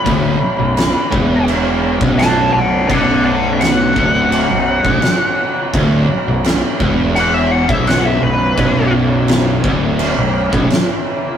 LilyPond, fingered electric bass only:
\new Staff \with { instrumentName = "Fingered electric bass" } { \clef bass \time 4/4 \key b \minor \tempo 4 = 84 d,,8 r16 b,,,8 r16 e,,4~ e,,16 b,,,8. b,,,8 | b,,,4. d,,8. b,,,8 b,,,16 r4 | d,,8 r16 b,,,8 r16 e,,4~ e,,16 b,,,8. b,,,8 | b,,,4. d,,8. b,,,8 b,,,16 r4 | }